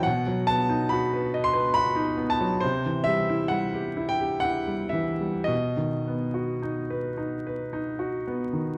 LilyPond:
\new Staff \with { instrumentName = "Grand piano" } { \time 3/4 \key b \phrygian \tempo 4 = 65 << { fis''8 a''8 \tuplet 3/2 { b''4 c'''8 b''4 a''8 } | c''8 e''8 \tuplet 3/2 { fis''4 g''8 } fis''8 e''8 | dis''2~ dis''8 r8 | } \\ { b,16 fis16 b16 dis'16 fis'16 b'16 dis''16 b'16 fis'16 dis'16 b16 fis16 | c16 e16 g16 e'16 g16 g'16 e'16 g'16 e'16 g16 e16 g16 | b,16 dis16 b16 fis'16 dis'16 b'16 dis'16 b'16 dis'16 fis'16 b16 dis16 | } >> }